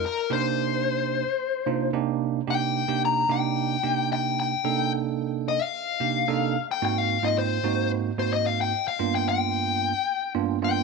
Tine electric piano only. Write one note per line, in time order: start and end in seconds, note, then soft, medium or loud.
0.30 1.23 C3 medium
0.30 1.23 A#3 medium
0.30 1.23 D4 medium
0.30 1.23 D#4 medium
0.30 1.23 G4 medium
1.66 1.90 C3 medium
1.66 1.90 A#3 medium
1.66 1.90 D4 medium
1.66 1.90 D#4 medium
1.66 1.90 F4 medium
1.93 2.40 C3 medium
1.93 2.40 A#3 medium
1.93 2.40 D4 medium
1.93 2.40 D#4 medium
1.93 2.40 G4 loud
2.48 2.82 C3 medium
2.48 2.82 A#3 medium
2.48 2.82 D4 medium
2.48 2.82 D#4 medium
2.48 2.82 G4 medium
2.88 3.23 C3 medium
2.88 3.23 A#3 medium
2.88 3.23 D4 medium
2.88 3.23 D#4 medium
2.88 3.23 G4 medium
3.29 3.76 C3 medium
3.29 3.76 A#3 medium
3.29 3.76 D4 medium
3.29 3.76 D#4 medium
3.29 3.76 G4 loud
3.83 4.53 C3 medium
3.83 4.53 A#3 medium
3.83 4.53 D4 medium
3.83 4.53 D#4 medium
3.83 4.53 G4 medium
4.65 5.57 C3 medium
4.65 5.57 A#3 medium
4.65 5.57 D4 medium
4.65 5.57 D#4 medium
4.65 5.57 A4 medium
6.00 6.24 C3 medium
6.00 6.24 A#3 medium
6.00 6.23 D4 medium
6.00 6.24 D#4 medium
6.00 6.24 G4 medium
6.28 6.55 C3 medium
6.28 6.55 A#3 medium
6.28 6.55 D4 medium
6.28 6.55 D#4 medium
6.28 6.55 A4 loud
6.82 7.17 G#2 medium
6.82 7.17 A#3 medium
6.82 7.17 C4 medium
6.82 7.17 D#4 medium
6.82 7.17 F#4 medium
7.23 7.57 G#2 medium
7.23 7.57 A#3 medium
7.23 7.57 C4 medium
7.23 7.58 D#4 medium
7.23 7.58 F4 medium
7.64 8.10 G#2 medium
7.64 8.10 A#3 medium
7.64 8.10 C4 medium
7.64 8.10 D#4 medium
7.64 8.10 F#4 loud
8.18 8.72 G#2 medium
8.18 8.72 A#3 medium
8.18 8.72 C4 medium
8.18 8.72 D#4 medium
8.18 8.72 F#4 medium
8.99 9.92 G2 medium
8.99 9.92 A#3 medium
8.99 9.92 B3 medium
8.99 9.92 D4 medium
8.99 9.92 F4 medium
10.35 10.58 G2 medium
10.35 10.58 A#3 medium
10.35 10.58 B3 medium
10.35 10.58 D4 medium
10.35 10.58 F4 loud
10.62 10.83 G2 medium
10.62 10.83 A#3 medium
10.62 10.83 B3 medium
10.62 10.83 D4 medium
10.62 10.83 F4 medium